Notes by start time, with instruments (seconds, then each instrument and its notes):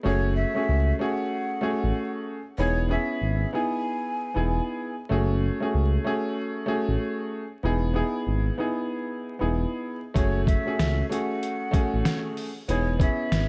0.03 analog synth bass F#1, upright piano A3 C#4 F#4 G#4, flute C#5
0.36 flute E5
0.55 upright piano A3 C#4 F#4 G#4
0.69 analog synth bass C#2
0.99 upright piano A3 C#4 F#4 G#4, flute F#5
1.61 upright piano A3 C#4 F#4 G#4
1.84 analog synth bass A1
2.58 analog synth bass E1, upright piano B3 D#4 E4 G#4, flute C#5
2.89 upright piano B3 C#4 E4 G#4, flute E5
3.22 analog synth bass G#1
3.53 upright piano B3 D#4 E4 G#4, flute G#5
4.34 analog synth bass E1, upright piano B3 D#4 E4 G#4
5.09 analog synth bass F#1, upright piano A3 C#4 F#4 G#4
5.60 upright piano A3 C#4 F#4 G#4
5.74 analog synth bass C#2
6.04 upright piano A3 C#4 F#4 G#4
6.66 upright piano A3 C#4 F#4 G#4
6.89 analog synth bass A1
7.63 analog synth bass E1, upright piano B3 D#4 E4 G#4
7.94 upright piano B3 D#4 E4 G#4
8.27 analog synth bass G#1
8.58 upright piano B3 D#4 E4 G#4
9.39 analog synth bass E1, upright piano B3 D#4 E4 G#4
10.14 analog synth bass F#1, upright piano A3 C#4 F#4 G#4, flute C#5, kick, closed hi-hat
10.46 flute E5, kick, closed hi-hat
10.65 upright piano A3 C#4 F#4 G#4
10.79 analog synth bass C#2, snare, closed hi-hat
11.09 upright piano A3 C#4 F#4 G#4, flute F#5, closed hi-hat
11.43 closed hi-hat
11.71 upright piano A3 C#4 F#4 G#4, kick, closed hi-hat
11.94 analog synth bass A1
12.05 snare, closed hi-hat
12.37 open hi-hat
12.68 analog synth bass E1, upright piano B3 D#4 E4 G#4, flute C#5, closed hi-hat
12.99 upright piano B3 C#4 E4 G#4, flute E5, kick, closed hi-hat
13.32 analog synth bass G#1, snare, closed hi-hat